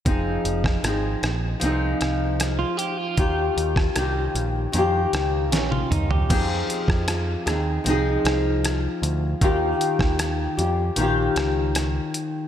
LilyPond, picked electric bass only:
\new Staff \with { instrumentName = "Picked electric bass" } { \clef bass \time 4/4 \key f \minor \tempo 4 = 77 f,,8 f,,8 aes,,8 bes,,8 c,8 c,4 r8 | ees,8 ees,8 c,8 bes,,8 f,8 des,8 bes,,8 des,8 | f,8 r16 f,8. ees,8 c,8 c,4 d,8 | ees,8 r16 ees,8. f,8 bes,,8 des,4 r8 | }